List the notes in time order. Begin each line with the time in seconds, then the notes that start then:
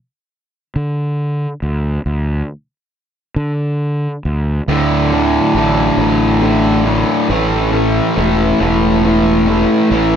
0.76 D3
1.62 D2
2.06 D2
3.36 D3
4.25 D2
4.68 D2 A2 D3
5.12 D2 A2 D3
5.55 A1 D2 A2 D3
5.98 A1 D2 A2 D3
6.41 D2 A2 D3
6.85 D2 A2 D3
7.29 A1 A2 E3 A3
7.72 A2 E3 A3
8.17 E1 A2 E3 A3
8.60 E1 A2 E3 A3
9.04 A2 E3 A3
9.47 A2 E3 A3
9.91 A1 A2 E3 A3